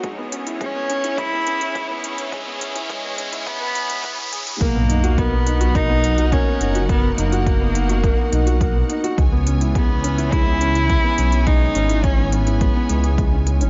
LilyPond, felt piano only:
\new Staff \with { instrumentName = "Felt piano" } { \time 4/4 \key b \major \tempo 4 = 105 gis16 b16 cis'16 e'16 gis16 b16 cis'16 e'16 gis16 b16 cis'16 e'16 gis16 b16 cis'16 e'16 | gis16 b16 cis'16 e'16 gis16 b16 cis'16 e'16 gis16 b16 e'16 gis16 e'16 e'16 gis'16 gis'16 | ais16 b16 dis'16 fis'16 ais16 b16 dis'16 fis'16 ais16 b16 dis'16 fis'16 ais16 b16 dis'16 fis'16 | ais16 b16 dis'16 fis'16 ais16 b16 dis'16 fis'16 ais16 b16 dis'16 fis'16 ais16 b16 dis'16 fis'16 |
gis16 b16 cis'16 e'16 gis16 b16 cis'16 e'16 gis16 b16 cis'16 e'16 gis16 b16 cis'16 e'16 | gis16 b16 cis'16 e'16 gis16 b16 cis'16 e'16 gis16 b16 gis16 gis'16 gis16 cis'16 gis16 cis'16 | }